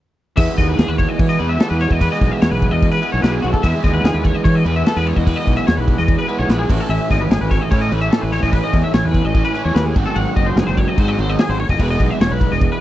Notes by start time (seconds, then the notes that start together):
0.36 E2 E3 G#3 B3 E4 E5, kick, crash
0.58 D#2 D#5, kick, crash
0.68 B4
0.78 D#2 G#4, snare, crash
0.88 D#2 B4
0.98 C#5, kick, crash
1.08 D#5
1.19 E3 C#5, kick, crash
1.29 D#5
1.39 E2 E3 G#3 B3 E4 B4, crash
1.49 E5
1.58 E3 G#3 B3 E4 A4, snare, crash
1.70 E2 B4
1.80 C#5, crash
1.91 E2 D#5, kick
1.99 E3 G#3 B3 E4 B4, kick, crash
2.12 D#5
2.21 B1, kick, crash
2.32 E5
2.42 E2 C#5, snare, crash
2.51 B1 B4
2.62 kick, crash
2.71 E2 D#5
2.82 kick, crash
2.92 B4
3.01 E3 G#3 B3 E4 B4, crash
3.12 B1 C#5
3.22 B1 E3 G#3 B3 B4, snare, crash
3.26 E4
3.32 G#4
3.42 B1 F#4, crash
3.53 A4, kick
3.62 E2 E3 G#3 B3 E4 E5, kick, crash
3.84 D#2 D#5, kick, crash
3.94 B4
4.04 D#2 G#4, snare, crash
4.14 D#2 B4
4.24 C#5, kick, crash
4.35 D#5
4.44 E3 C#5, kick, crash
4.55 D#5
4.64 E2 E3 G#3 B3 E4 B4, crash
4.76 E5
4.84 E3 G#3 B3 A4, snare, crash
4.88 E4
4.96 E2 B4
5.07 C#5, crash
5.16 E2 D#5, kick
5.25 E3 G#3 B3 E4 B4, kick, crash
5.36 D#5
5.47 B1, kick, crash
5.57 E5
5.67 E2 C#5, snare, crash
5.77 B1 B4
5.88 kick, crash
5.98 E2 D#5
6.08 kick, crash
6.18 B4
6.27 G#3 B3 E4 B4, crash
6.31 E3
6.39 B1 C#5
6.48 A#1 E3 G#3 B3 E4 B4, snare, crash
6.59 G#4
6.68 A1 A2 E3 A3 C#4 E4 F#4, kick, crash
6.80 A4
6.89 A1 E5, crash
7.11 G#1 D#5, kick, crash
7.21 B4
7.30 G#1 G#4, snare, crash
7.41 G#1 B4
7.51 C#5, kick, crash
7.61 D#5
7.71 A2 E3 A3 C#4 E4 C#5, kick, crash
7.81 D#5
7.91 A1 A2 E3 A3 C#4 E4 B4, crash
8.01 E5
8.11 A4, snare, crash
8.21 A1 B4
8.32 A2 E3 A3 C#4 E4 C#5, crash
8.43 A1 D#5, kick
8.52 B4, kick, crash
8.64 D#5
8.73 E2, kick, crash
8.84 E5
8.93 A1 C#5, snare, crash
9.04 E2 B4
9.14 kick, crash
9.25 A1 D#5
9.34 A2 E3 A3 C#4 E4, kick, crash
9.45 B4
9.54 E3 A3 C#4 E4 B4, crash
9.58 A2
9.65 E2 C#5
9.75 D#2 B4, snare, crash
9.85 G#4
9.95 G#1 G#2 D#3 F#3 C4 F#4, kick, crash
9.99 F#4
10.06 A4
10.16 G#1 F#5, crash
10.36 F#1 D#5, kick, crash
10.46 C5
10.56 F#1 G#4, snare, crash
10.67 F#1 C5
10.77 C#5, kick, crash
10.88 D#5
10.96 G#2 D#3 F#3 C4 F#4 C5, kick, crash
11.08 D#5
11.17 G#1 G#2 D#3 F#3 C4 F#4 C5, crash
11.30 D#5
11.39 G#4, snare, crash
11.49 G#1 C5
11.59 C#5, crash
11.69 F#1 D#5, kick
11.78 E1 E3 G#3 B3 B4, kick, crash
11.82 E4
11.90 D#5
12.00 B1, kick, crash
12.10 E5
12.20 E1 C#5, snare, crash
12.31 B1 B4
12.41 kick, crash
12.51 E1 D#5
12.61 kick, crash
12.72 B4